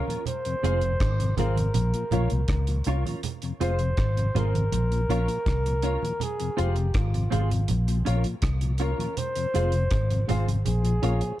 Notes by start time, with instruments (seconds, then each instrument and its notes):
Already playing: flugelhorn A#4
0.07 tonewheel organ A#2 F3, clean electric guitar C#4 F4 A#4 C#5, closed hi-hat, high conga
0.26 flugelhorn C5, closed hi-hat, low conga
0.45 tonewheel organ F2 C3, closed hi-hat
0.62 fingered electric bass F1, tonewheel organ G#3 C4 F4, clean electric guitar C4 F4 G#4 C5, upright piano F4 G#4 C5 F5, closed hi-hat
0.81 tonewheel organ F2 C3, closed hi-hat
1.00 fingered electric bass G#1, kick, cross-stick, closed hi-hat
1.20 tonewheel organ F2 C3, closed hi-hat
1.37 fingered electric bass G#1, tonewheel organ G#3 C4 F4, clean electric guitar C4 F4 G#4 C5, upright piano F4 G#4 C5 F5, flugelhorn A#4, closed hi-hat, low conga
1.56 tonewheel organ F2 C3, closed hi-hat, high conga
1.74 fingered electric bass A#1, closed hi-hat, low conga
1.94 tonewheel organ A#2 F3, closed hi-hat
2.11 fingered electric bass A#1, tonewheel organ A#3 C#4 F4, clean electric guitar C#4 F4 A#4 C#5, upright piano F4 A#4 C#5 F5, closed hi-hat, low conga
2.30 fingered electric bass C2, tonewheel organ A#2 F3, closed hi-hat
2.48 fingered electric bass C#2, kick, cross-stick, closed hi-hat, high conga
2.67 tonewheel organ A#2 F3, closed hi-hat
2.84 fingered electric bass C2, tonewheel organ A#3 C#4 F4, clean electric guitar C#4 F4 A#4 C#5, upright piano F4 A#4 C#5 F5, closed hi-hat
3.05 tonewheel organ A#2 F3, clean electric guitar C#4 F4 A#4 C#5, closed hi-hat, high conga
3.23 closed hi-hat, low conga
3.42 tonewheel organ F2 C3, closed hi-hat
3.60 fingered electric bass F1, tonewheel organ G#3 C4 F4, clean electric guitar C4 F4 G#4 C5, upright piano F4 G#4 C5 F5, flugelhorn C5, closed hi-hat
3.79 tonewheel organ F2 C3, closed hi-hat
3.97 fingered electric bass G#1, kick, cross-stick, closed hi-hat
4.17 tonewheel organ F2 C3, closed hi-hat
4.35 fingered electric bass G#1, tonewheel organ G#3 C4 F4, clean electric guitar C4 F4 G#4 C5, upright piano F4 G#4 C5 F5, flugelhorn A#4, closed hi-hat, low conga
4.54 tonewheel organ F2 C3, closed hi-hat, high conga
4.72 fingered electric bass A#1, closed hi-hat, low conga
4.91 tonewheel organ A#2 F3, closed hi-hat
5.09 fingered electric bass A#1, tonewheel organ A#3 C#4 F4, clean electric guitar C#4 F4 A#4 C#5, upright piano F4 A#4 C#5 F5, closed hi-hat
5.28 tonewheel organ A#2 F3, upright piano C#5 F5, closed hi-hat
5.46 fingered electric bass C2, kick, cross-stick, closed hi-hat, high conga
5.65 tonewheel organ A#2 F3, closed hi-hat
5.82 tonewheel organ A#3 C#4 F4, clean electric guitar C#4 F4 A#4 C#5, upright piano F4 A#4 C#5 F5, closed hi-hat
6.02 tonewheel organ A#2 F3, closed hi-hat, high conga
6.20 flugelhorn G#4, closed hi-hat, low conga
6.40 tonewheel organ F2 C3, closed hi-hat
6.57 fingered electric bass F1, tonewheel organ G#3 C4 F4, clean electric guitar C4 F4 G#4 C5, upright piano F4 G#4 C5 F5, flugelhorn G4, closed hi-hat
6.76 tonewheel organ F2 C3, closed hi-hat
6.94 fingered electric bass G#1, flugelhorn F4, kick, cross-stick, closed hi-hat
7.14 tonewheel organ F2 C3, closed hi-hat
7.30 fingered electric bass G#1, tonewheel organ G#3 C4 F4, clean electric guitar C4 F4 G#4 C5, upright piano F4 G#4 C5 F5, closed hi-hat, low conga
7.50 tonewheel organ F2 C3, closed hi-hat, high conga
7.68 fingered electric bass A#1, closed hi-hat, low conga
7.88 tonewheel organ A#2 F3, closed hi-hat
8.05 fingered electric bass A#1, tonewheel organ A#3 C#4 F4, clean electric guitar C#4 F4 A#4 C#5, upright piano F4 A#4 C#5 F5, closed hi-hat
8.24 tonewheel organ A#2 F3, closed hi-hat
8.42 fingered electric bass C2, kick, cross-stick, closed hi-hat, high conga
8.61 tonewheel organ A#2 F3, closed hi-hat
8.78 tonewheel organ A#3 C#4 F4, clean electric guitar C#4 F4 A#4 C#5, upright piano F4 A#4 C#5 F5, flugelhorn A#4, closed hi-hat
8.98 tonewheel organ A#2 F3, clean electric guitar C#4 F4 A#4 C#5, closed hi-hat, high conga
9.17 flugelhorn C5, closed hi-hat, low conga
9.36 tonewheel organ F2 C3, closed hi-hat
9.54 fingered electric bass F1, tonewheel organ G#3 C4 F4, clean electric guitar C4 F4 G#4 C5, upright piano F4 G#4 C5 F5, closed hi-hat
9.72 tonewheel organ F2 C3, closed hi-hat
9.91 fingered electric bass G#1, kick, cross-stick, closed hi-hat
10.09 tonewheel organ F2 C3, closed hi-hat
10.27 fingered electric bass G#1, tonewheel organ G#3 C4 F4, clean electric guitar C4 F4 G#4 C5, upright piano F4 G#4 C5 F5, closed hi-hat, low conga
10.46 tonewheel organ F2 C3, closed hi-hat, high conga
10.65 fingered electric bass A#1, flugelhorn G#4, closed hi-hat, low conga
10.83 tonewheel organ A#2 F3, closed hi-hat
11.02 fingered electric bass A#1, tonewheel organ A#3 C#4 F4, clean electric guitar C#4 F4 A#4 C#5, upright piano F4 A#4 C#5 F5, closed hi-hat
11.21 tonewheel organ A#2 F3, closed hi-hat